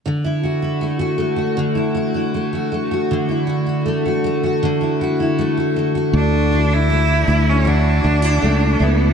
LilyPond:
<<
  \new Staff \with { instrumentName = "Steel-string acoustic guitar" } { \time 4/4 \key d \major \tempo 4 = 79 d16 e'16 fis'16 e'16 a16 fis'16 a16 fis'16 d16 e'16 fis'16 e'16 a16 fis'16 a16 fis'16 | d16 e'16 fis'16 e'16 a16 fis'16 a16 fis'16 d16 e'16 fis'16 e'16 a16 fis'16 a16 fis'16 | r8 e'8 a8 e'8 fis'8 d'16 e'16 a8 e'8 | }
  \new Staff \with { instrumentName = "Cello" } { \time 4/4 \key d \major r1 | r1 | d'8. e'4 cis'16 d'4. b8 | }
  \new Staff \with { instrumentName = "Fretless electric bass" } { \clef bass \time 4/4 \key d \major r1 | r1 | d,4. d,4 d,8 cis,8 cis,8 | }
>>